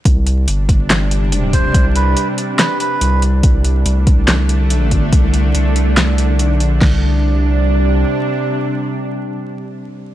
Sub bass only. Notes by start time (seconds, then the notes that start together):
0.05 C2
0.48 G1
1.74 C2
3.01 C2
3.44 C2
3.86 C2
5.13 C2
5.55 C2
6.43 B1
6.68 A#1
6.82 C2